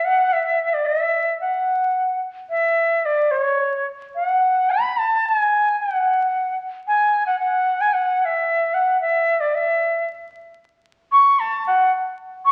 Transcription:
0.04 F#5
0.33 E5
0.74 D5
0.86 E5
1.41 F#5
2.50 E5
3.02 D5 E5
3.31 C#5
4.15 F5
4.26 F#5
4.71 B5
4.98 A5
5.26 A5
5.37 G#5
5.80 F#5
6.88 G#5
7.26 F#5
7.40 F#5
7.81 G#5
7.93 F#5
8.21 F#5
8.25 E5
8.74 F#5
9.01 E5
9.40 D5
9.55 E5
11.12 C#6
11.40 A5
11.67 F#5
12.46 C#6

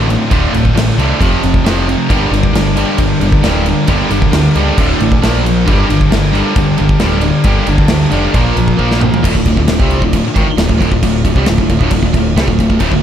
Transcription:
Already playing: A1 D2 A2 D3 A3 F4
0.10 D2 A2, crash
0.31 D1 D2 A2 D3 A3 F4, kick, crash
0.53 D1 D2 A2, crash
0.65 kick
0.75 A1 D2 A2, snare, crash
0.98 C2 D2 A2 D3, crash
1.20 F1 F2 C3 F3, kick, crash
1.43 F1 F2 C3, crash
1.54 kick
1.65 F1 F2 C3 F3, snare, crash
1.88 F2 C3, crash
2.07 G1 G2 D3 G3 A#3 G4 A#4 D5 A#5, kick, crash
2.11 D4 G4
2.31 G1 G2 D3, crash
2.43 kick
2.54 G1 G2 D3, snare, crash
2.76 G2 D3 G3, crash
2.98 G1 G2 D3, kick, crash
3.21 G1 G2 D3, crash
3.32 kick
3.44 D1 G2 D3 G3, snare, crash
3.66 G2 D3, crash
3.87 G1 G2 D3 G3 A#3 D4 G4, kick, crash
4.10 G1 G2 D3, crash
4.22 kick
4.33 D2 G2 D3, snare, crash
4.55 C#2 G2 D3 G3, crash
4.77 D1 D2 A2 D3 D4 A4 A5 D6, kick, crash
5.00 A1 D2 A2, crash
5.12 kick
5.21 A#1 A#2 F3 A#3 F4 A#4 A#5 F6, snare, crash
5.45 A#2 F3, crash
5.66 G1 G2 D3 G3 A#3 D4 G4 D5 D6, kick, crash
5.89 G1 G2 D3, crash
6.01 kick
6.10 G1 G2 D3, snare, crash
6.33 G2 D3 G3, crash
6.55 G1 G2 D3, kick, crash
6.78 G1 G2 D3, crash
6.89 kick
7.00 D1 G2 D3 G3, snare, crash
7.21 G2 D3, crash
7.44 G1 G2 D3 G3 A#3 D4 G4, kick, crash
7.67 G1 G2 D3, crash
7.78 kick
7.88 D2 G2 D3, snare, crash
8.12 F1 G2 D3 G3, crash
8.34 A#1 A#2 F3 A#3 F4 A#4 F6, kick, crash
8.56 A#1 A#2 F3, crash
8.68 kick
8.79 A#1 A#2 F3 A#3, kick
8.91 snare
9.01 A#2 F3, mid tom
9.14 floor tom
9.24 D1 D2 A2 D3 A3 D4 F4, kick, crash
9.35 D1 D2 A2, kick
9.45 D1 D2 A2, kick, crash
9.57 D1 D2 A2, kick
9.68 D1 D2 A2, snare, crash
9.80 C2 C3 G3 C4, kick
9.91 crash
10.02 D1 D2 A2, kick
10.13 D1 D2 A2, kick, crash
10.24 muted picked electric bass stroke, muted distorted electric guitar stroke
10.36 G#1 G#2 D#3, kick, crash
10.46 muted picked electric bass stroke, muted distorted electric guitar stroke
10.58 D1 D2 A2, snare, crash
10.69 D1 D2 A2, kick
10.81 D1 D2 A2, kick, crash
10.92 D1 D2 A2, kick
11.03 D1 D2 A2, kick, crash
11.25 D1 D2 A2, kick, crash
11.36 C2 C3 G3, kick
11.46 D1 D2 A2, snare, crash
11.58 D1 D2 A2, kick
11.69 D1 D2 A2, kick, crash
11.79 D1 D2 A2, kick
11.83 D2
11.91 D1 A2, kick, crash
11.95 D2 A2
12.03 D1 D2 A2, kick
12.14 D1 D2 A2, kick, crash
12.36 C2 C3 G3, snare, crash
12.48 D1 D2 A2, kick
12.59 D1 D2 A2, kick, crash
12.70 D1 D2 A2, kick
12.80 D1 D2 A2, kick, crash
12.90 D1 D2 A2, kick
12.94 D2 A2

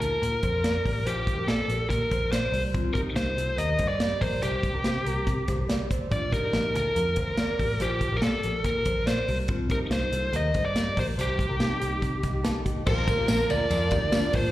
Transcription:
0.00 D2 F4 A4 A#4, closed hi-hat
0.21 A#2 F4 A#4, closed hi-hat
0.43 F2 A4 C5, kick, closed hi-hat
0.64 A#4 D5, snare, closed hi-hat
0.85 A1 G4 A#4, kick, open hi-hat
1.05 A#1 F4 G4 C5, closed hi-hat
1.27 kick, closed hi-hat
1.36 A#1 G4 A#4
1.47 A#2 A4 A#4 D5, snare, closed hi-hat
1.68 A#1 G4 A#4, closed hi-hat
1.90 A#2 A#4, kick, closed hi-hat
2.11 A#1 A4 C5, kick, closed hi-hat
2.32 A#4 C5 D5, snare, closed hi-hat
2.52 C2 G4 C5, open hi-hat
2.74 C4 F4, kick, closed hi-hat
2.94 D#4 G4 A#4, kick, closed hi-hat
3.16 C2 C5, snare, closed hi-hat
3.37 C2 F4 A4, closed hi-hat
3.57 D#2 G4 A#4 D#5, closed hi-hat
3.79 G2 A4 C5, kick, snare, closed hi-hat
3.88 D5
4.00 G4 D5, snare, closed hi-hat
4.21 A#1 G4 A#4 C5, kick, open hi-hat
4.42 C2 G4 C5, closed hi-hat
4.63 kick, closed hi-hat
4.73 C2 G4 A#4
4.84 C3 G4 C5, snare, closed hi-hat
5.05 C2 G4 A#4, closed hi-hat
5.27 C3, kick, closed hi-hat
5.48 C2 A4 C5, kick, snare, closed hi-hat
5.69 G4 D5, snare, closed hi-hat
5.90 A4 C5, kick, closed hi-hat
6.11 A#1 D4 F4 D5, kick, closed hi-hat
6.33 D#4 G4 A#4, kick, closed hi-hat
6.53 A#1, snare, closed hi-hat
6.75 D2 F4 A4 A#4, closed hi-hat
6.95 F2 F4 A#4, closed hi-hat
7.16 D2 A4 C5, kick, closed hi-hat
7.37 A#4 D5, snare, closed hi-hat
7.59 A1 G4 A#4, kick, open hi-hat
7.80 A#1 F4 G4 C5, closed hi-hat
8.01 kick, closed hi-hat
8.12 A#1 G4 A#4
8.17 A#4
8.22 A#2 A4 A#4 D5, snare, closed hi-hat
8.43 A#1 G4 A#4, closed hi-hat
8.64 A#2 A#4, kick, closed hi-hat
8.85 A#1 A4 C5, kick, closed hi-hat
9.06 A#4 C5 D5, snare, closed hi-hat
9.28 C2 G4 C5, open hi-hat
9.48 C4 F4, kick, closed hi-hat
9.70 D#4 G4 A#4, kick, closed hi-hat
9.90 C2 C5, snare, closed hi-hat
10.12 C2 F4 A4, closed hi-hat
10.33 D#2 G4 A#4 D#5, closed hi-hat
10.54 G2 A4 C5, kick, snare, closed hi-hat
10.65 D5
10.76 G4 D5, snare, closed hi-hat
10.97 A#1 G4 A#4 C5, kick, open hi-hat
11.18 C2 G4 C5, closed hi-hat
11.39 kick, closed hi-hat
11.49 C2 G4 A#4
11.59 C3 D#4 A4, snare, closed hi-hat
11.80 C2 D#4 G4, closed hi-hat
12.02 C3, kick, closed hi-hat
12.23 C2 D#4 G4, kick, snare, closed hi-hat
12.44 D#4 A4, snare, closed hi-hat
12.65 D#4 G4, kick, closed hi-hat
12.86 A#1 A#2 D3 F3 A#3 D4 F4 A#4 C5, kick, crash, tambourine
13.07 F3 A#3 D4 A#4, kick, ride, tambourine
13.18 G4 A#4
13.28 A#1 F3 A#3 D4 F4 A#4, snare, ride, tambourine
13.49 D2 F3 A#3 D4 A#4 D5, ride, tambourine
13.70 F2 A#2 D3 F3 A#3 D4 F4 A4 A#4, ride, tambourine
13.91 D2 F3 A#3 D4 D#4 G4 A#4, kick, snare, ride, tambourine
14.12 F3 A#3 D4 F4 A#4, snare, ride, tambourine
14.32 A1 F3 A#3 D4 A#4 C5, kick, open hi-hat, ride

